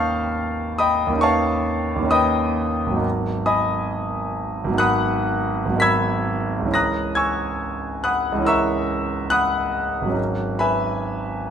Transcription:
0.00 1.05 D#2 soft
0.00 1.09 D#3 soft
0.00 1.11 C#4 soft
0.00 1.15 D#4 soft
0.00 1.17 B4 soft
0.00 0.75 F5 medium
0.00 0.80 G5 medium
0.00 0.75 A5 medium
0.00 0.79 B5 medium
0.00 0.75 C#6 medium
0.00 0.79 D#6 medium
0.00 0.78 F6 medium
0.00 3.06 G6 medium
0.79 1.20 D#5 medium
0.79 1.20 G5 medium
0.79 1.20 B5 medium
0.79 1.23 D#6 medium
1.07 1.95 D#2 medium
1.07 1.98 D#3 soft
1.13 2.01 C#4 soft
1.17 2.05 D#4 soft
1.17 2.08 B4 soft
1.17 2.11 C#6 medium
1.23 2.08 C#5 medium
1.23 2.08 F5 medium
1.23 2.08 A5 medium
1.96 2.93 D#2 medium
1.96 2.95 D#3 soft
2.02 2.96 C#4 soft
2.02 2.95 D#4 soft
2.09 3.00 B4 soft
2.09 3.00 D#5 medium
2.09 3.00 G5 medium
2.09 3.00 B5 medium
2.09 3.04 D#6 medium
2.86 4.63 G#1 soft
2.91 4.65 F#3 soft
2.91 4.69 B3 soft
2.96 4.72 D#4 soft
2.96 4.74 A#4 soft
3.46 4.76 D#5 medium
3.46 4.76 G#5 medium
3.46 4.76 B5 medium
3.46 4.78 D#6 medium
4.64 5.64 G#1 medium
4.64 5.68 F#3 soft
4.71 5.70 B3 soft
4.71 5.75 D#4 soft
4.77 5.77 A#4 soft
4.77 5.78 F#5 medium
4.77 5.78 B5 medium
4.77 5.78 D#6 medium
4.77 5.81 F#6 medium
5.65 6.63 G#1 medium
5.65 6.65 F#3 soft
5.72 6.66 B3 soft
5.76 6.69 D#4 soft
5.76 6.70 A#4 soft
5.76 6.73 B6 loud
5.82 6.70 B5 medium
5.82 6.70 E6 medium
5.82 6.70 G#6 medium
6.59 8.31 C#2 soft
6.59 8.33 E3 soft
6.66 8.37 C#4 soft
6.66 8.40 E4 soft
6.72 8.43 A#4 soft
6.72 7.16 A#5 medium
6.72 7.16 D#6 medium
6.72 7.16 F#6 medium
6.72 7.18 A#6 medium
7.15 8.01 G#5 medium
7.15 8.01 C#6 medium
7.15 8.00 E6 medium
7.15 8.04 G#6 medium
8.04 8.45 F#5 medium
8.04 8.44 B5 medium
8.04 8.45 D#6 medium
8.04 8.47 F#6 medium
8.32 10.06 C#2 medium
8.32 10.08 E3 soft
8.39 10.07 C#4 soft
8.39 10.11 E4 soft
8.45 10.12 A#4 soft
8.45 9.29 E5 medium
8.45 9.28 A#5 medium
8.45 9.29 C#6 medium
8.45 9.32 E6 loud
9.30 10.14 F#5 medium
9.30 10.13 B5 medium
9.30 10.14 D#6 medium
9.30 10.17 F#6 loud
10.01 11.50 G#1 soft
10.01 11.50 F#3 soft
10.09 11.50 C#4 soft
10.09 11.50 D#4 soft
10.14 11.50 A#4 soft
10.59 11.50 B4 medium
10.59 11.50 E5 medium
10.59 11.50 G#5 medium
10.59 11.50 B5 medium

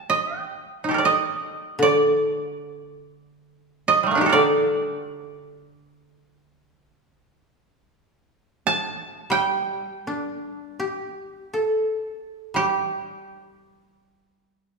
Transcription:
0.00 0.40 G5 medium
0.10 0.40 D#5 medium
0.40 1.44 G5 medium
0.84 1.04 D#4 soft
0.89 2.93 G4 soft
0.89 2.81 A4 soft
0.94 2.78 A#4 soft
0.98 1.82 D5 soft
1.05 1.89 D#5 medium
1.79 4.32 D3 medium
1.79 3.83 D5 medium
3.88 4.38 D#5 medium
4.03 4.32 G3 soft
4.03 4.35 A3 soft
4.11 4.32 A#3 soft
4.15 6.58 D4 soft
4.15 4.38 D#4 soft
4.21 6.25 G4 soft
4.26 6.16 A4 soft
4.26 6.13 A#4 soft
4.32 7.71 D3 medium
4.32 7.31 D5 medium
8.67 9.92 A5 medium
9.30 12.53 G3 medium
9.30 12.51 G5 medium
10.07 13.07 D4 soft
10.80 13.83 G4 soft
11.54 14.59 A4 soft
12.54 14.79 G3 soft
12.54 14.79 G4 medium

